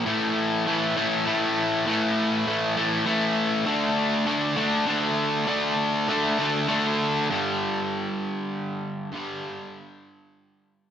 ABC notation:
X:1
M:3/4
L:1/8
Q:1/4=99
K:D
V:1 name="Distorted electric guitar" clef=bass
[A,,E,A,]2 [A,,E,A,] [A,,E,A,] [A,,E,A,]2 | [A,,E,A,]2 [A,,E,A,] [A,,E,A,] [A,,E,A,]2 | [D,A,D]2 [D,A,D] [D,A,D] [D,A,D]2 | [D,A,D]2 [D,A,D] [D,A,D] [D,A,D]2 |
[G,,D,G,]6 | [G,,D,G,]6 |]